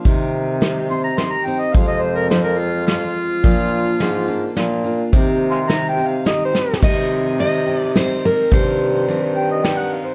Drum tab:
CC |------------------|------------------|------------------|------------------|
RD |------------------|------------------|------------------|------------------|
HH |x-----x-----x-----|x-----x-----x-----|x-----x-----x-----|x-----x-----x-----|
SD |------o-----o-----|------o-----o-----|------o-----o-----|------o-----o--o-o|
BD |o-----------------|o-----------------|o-----------------|o-----------------|

CC |x-----------------|------------------|
RD |------x-----x-----|x-----x-----x-----|
HH |------------------|------------------|
SD |------------o-----|------------o-----|
BD |o-----------------|o-----------------|